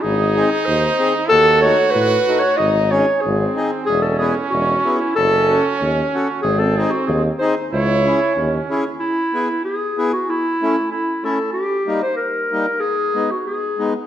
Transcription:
X:1
M:2/4
L:1/16
Q:1/4=94
K:C#m
V:1 name="Clarinet"
G3 G ^B3 z | A2 c2 B3 c | d2 c2 G3 z | G A G2 F3 E |
A3 z c3 z | G A G F G2 ^B2 | c6 z2 | [K:E] E4 G3 F |
E4 E2 A2 | =G3 =c ^A4 | G3 F G3 z |]
V:2 name="Accordion"
z2 [^B,DG]2 z2 [B,DG]2 | z2 [A,DF]2 z2 [A,DF]2 | z2 [CDG]2 z2 [^B,DG]2 | z2 [B,EG]2 z2 [B,EG]2 |
z2 [CFA]2 z2 [CFA]2 | z2 [^B,DG]2 z2 [B,DG]2 | z2 [CEG]2 z2 [CEG]2 | [K:E] z2 [B,EG]2 z2 [B,EG]2 |
z2 [A,CE]2 z2 [A,CE]2 | z2 [=G,^A,D]2 z2 [G,A,D]2 | z2 [G,B,D]2 z2 [G,B,D]2 |]
V:3 name="Trumpet"
D8 | F8 | D2 z2 ^B,4 | C8 |
C8 | ^B,6 z2 | E4 C4 | [K:E] z8 |
z8 | z8 | z8 |]
V:4 name="Tuba" clef=bass
G,,,4 D,,2 z2 | D,,4 A,,2 z2 | G,,,4 G,,,2 z2 | E,,,4 E,,,2 z2 |
F,,,4 D,,2 z2 | G,,,4 D,,2 z2 | C,,4 D,,2 z2 | [K:E] z8 |
z8 | z8 | z8 |]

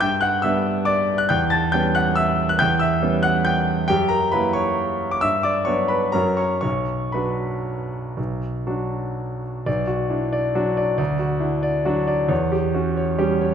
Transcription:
X:1
M:3/4
L:1/16
Q:1/4=136
K:Bm
V:1 name="Grand piano"
[gg']2 [ff']2 [ee']4 [dd']3 f' | [gg']2 [aa']2 [gg']2 [ff']2 [ee']3 f' | [gg']2 [ee']4 [ff']2 [gg']2 z2 | [Gg]2 [^A^a]2 [Bb]2 [cc']4- [cc'] d' |
[ee']2 [dd']2 [cc']2 [Bb]2 [^A^a]2 [cc']2 | [cc']4 [Bb]8- | [Bb]8- [Bb]2 z2 | d2 F2 E2 d2 F2 d2 |
d2 F2 E2 d2 F2 d2 | c2 G2 F2 c2 G2 c2 |]
V:2 name="Grand piano" clef=bass
G,,4 [G,B,D]8 | E,,4 [G,B,C]8 | E,,4 [G,B,C]8 | F,,4 [F,^A,E]8 |
G,,4 [F,B,D]4 [F,,F,CF]4 | B,,,4 [F,DF]8 | B,,,4 [F,DF]8 | B,,,4 D4 [F,D]4 |
D,,4 D4 [F,D]4 | E,,4 C4 [G,C]4 |]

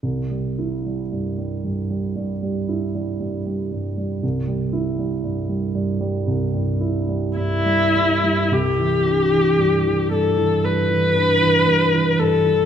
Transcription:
X:1
M:4/4
L:1/16
Q:1/4=57
K:C
V:1 name="Viola"
z16 | z12 E4 | G6 A2 B6 A2 |]
V:2 name="Grand piano" clef=bass
C,, G, E G, G,, G, G,, G, G,, G, E G, G,, G, G,, G, | C,, G, E G, G,, G, G,, G, C,, G,, E G, G,, G, G,, G, | C,, E, D E, G,, E, G,, E, G,, E, D E, G,, E, G,, E, |]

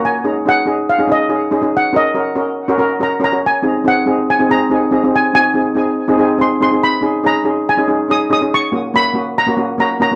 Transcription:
X:1
M:4/4
L:1/16
Q:"Swing 16ths" 1/4=141
K:F#
V:1 name="Steel pan"
g4 f4 e2 d4 z2 | f2 d8 z2 a2 a2 | g4 f4 g2 a4 z2 | g2 g8 z2 ^b2 b2 |
b4 a4 g2 z2 d'2 d'2 | c'4 b4 a2 z2 a2 a2 |]
V:2 name="Steel pan"
z2 [CDG] z [CDG] z [CDG]2 z [CDG] [CDG] z [CDG] z [CDG] [CDG] | z2 [CFA] z [CFA] z [CFA]2 z [CFA] [CFA] z [CFA] z [CFA] [CFc] | z2 [^B,DG] z [B,DG] z [B,DG]2 z [B,DG] [B,DG] z [B,DG] z [B,DG] [B,DG]- | [^B,DG] z [B,DF] z [B,DG] z [B,DG]2 z [B,DG] [B,DG] z [B,DG] z [B,DG] [B,DG] |
z2 [CDG] z [CDG] z [CDG]2 z [CDG] [CDG] z [CDG] z [CDG] [CDG] | z2 [A,CF] z [A,CF] z [A,CF]2 z [A,CF] [A,CF] z [A,CF] z [A,CF] [A,C] |]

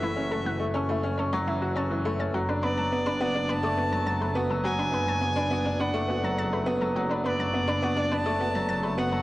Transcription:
X:1
M:4/4
L:1/16
Q:1/4=104
K:Dlyd
V:1 name="Violin"
e4 z12 | z2 d6 a6 z2 | g8 f6 z2 | z2 d6 a6 f2 |]
V:2 name="Synth arpeggio sound"
E z A f z A E z A c E z a z E a | F B B a z B F z B d F a a B F A | F B B a z B F z B d F a a B F A | F B B a z B F z B d F a a B F A |]
V:3 name="Upright piano"
E, C A, E, A, C A, C C F, E, F C E, A, C | F, D B, F, B, D B, D D A, B, F, F, A, B, F, | F, D B, F, B, D B, D D A, B, F, F, A, B, F, | F, D B, F, B, D B, D D A, B, F, F, A, B, F, |]
V:4 name="Double bass section" clef=bass
F,,,16 | F,,,16- | F,,,16- | F,,,16 |]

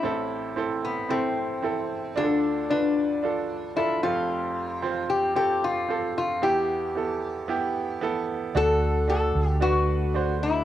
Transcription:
X:1
M:4/4
L:1/8
Q:1/4=113
K:Ddor
V:1 name="Resonator guitar played with a steel bar"
E3 B, C4 | D2 D4 E F- | F3 G G F2 F | G6- G z |
A2 A2 ^F3 E |]
V:2 name="Grand piano"
[CEA]2 [CEA]2 [CEA]2 [CEA]2 | [DF^GA]2 [DFB]2 [DFA]2 [DFA] [CFA]- | [CFA]2 [CFc]2 [CFA]2 [CFA]2 | [B,EG]2 [B,EA]2 [B,EG]2 [B,EA]2 |
[D^FA]2 [DFA]2 [DFB]2 [DFc]2 |]
V:3 name="Grand piano" clef=bass
[A,,,A,,]8 | [D,,D,]6- [D,,D,] [F,,,F,,]- | [F,,,F,,]6- [F,,,F,,] z | [E,,E,]8 |
D,3 z4 z |]
V:4 name="Tonewheel organ"
z8 | z8 | z8 | z8 |
[D,A,^F]8 |]
V:5 name="Fingered electric bass" clef=bass
z8 | z8 | z8 | z8 |
D,,3 D,,4- D,, |]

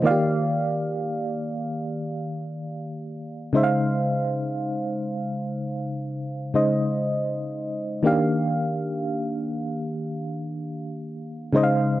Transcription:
X:1
M:4/4
L:1/8
Q:"Swing 16ths" 1/4=60
K:Eb
V:1 name="FM electric piano"
[E,B,FGdf]6- [E,B,FGdf] [_D,A,Ec_f=f]- | [_D,A,Ec_f=f]4- [D,A,Ec_f=f] [D,A,Ece]3 | [E,B,DGf]6- [E,B,DGf] [_D,A,Ecef] |]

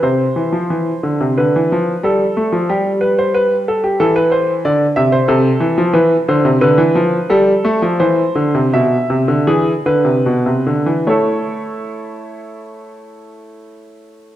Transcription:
X:1
M:4/4
L:1/16
Q:1/4=89
K:Cmix
V:1 name="Grand piano"
c8 =B4 A4 | G2 =B c B2 A G A B c2 d2 e c | [K:Ephr] A4 B2 c2 B4 A4 | c4 e4 ^G2 B6 |
[EA^c]16 |]
V:2 name="Grand piano" clef=bass
C,2 E, F, E,2 D, C, D, E, F,2 G,2 A, F, | G,8 E,4 D,2 C,2 | [K:Ephr] C,2 E, F, E,2 D, C, D, E, F,2 G,2 A, F, | E,2 D, C, B,,2 C, D, E,2 D, C, B,, C, D, E, |
A,16 |]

